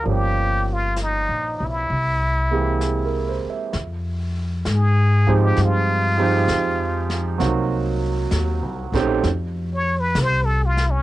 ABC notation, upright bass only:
X:1
M:4/4
L:1/8
Q:"Swing" 1/4=65
K:Fm
V:1 name="Upright bass" clef=bass
G,,,2- (3G,,, B,,, =B,,, C,,3 z | F,,2 A,,2 G,,2 F,,2 | C,,2 (3E,, C,, B,,, F,,2 C,,2 |]